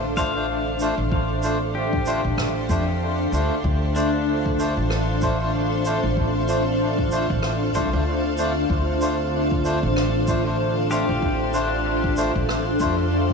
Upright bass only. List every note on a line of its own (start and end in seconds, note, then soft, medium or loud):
0.00 0.95 A1 medium
0.98 2.21 A1 medium
2.25 2.37 A1 medium
2.38 2.66 A1 medium
2.69 3.30 F2 medium
3.32 3.49 D2 medium
3.64 4.74 D2 medium
4.77 6.00 A1 medium
6.04 7.26 A1 medium
7.30 7.72 A1 medium
7.75 7.91 C2 loud
7.93 8.67 D2 medium
8.70 9.79 D2 medium
9.83 11.06 A1 medium
11.09 12.32 A1 medium
12.35 12.48 A1 medium
12.49 12.77 A1 medium
12.80 13.33 F2 medium